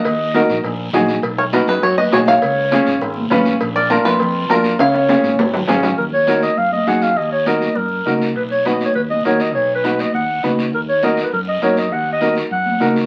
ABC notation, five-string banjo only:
X:1
M:4/4
L:1/8
Q:1/4=202
K:Ebm
V:1 name="Five-string banjo"
g4- g z3 | z d B =B d ^d _d f- | f4- f z3 | z =d B c3 B2 |
f6 z2 | z8 | z8 | z8 |
z8 | z8 | z8 |]